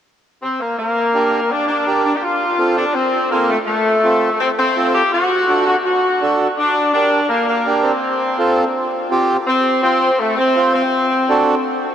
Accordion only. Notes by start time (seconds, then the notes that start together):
1.14 D4 G4 A#4
1.87 D4 G4 A#4
2.58 C4 F4 A4
3.31 C4 F4 A4
4.04 C4 F4 A4
4.77 C4 F4 A4
5.49 D4 F#4 A4
6.21 D4 F#4 A4
6.94 D4 G4 A#4
7.66 D4 G4 A#4
8.38 C4 F4 A4
9.11 C4 F4 G4
9.83 C4 F4 C5
10.56 C4 F4 C5
11.29 D4 F#4 A4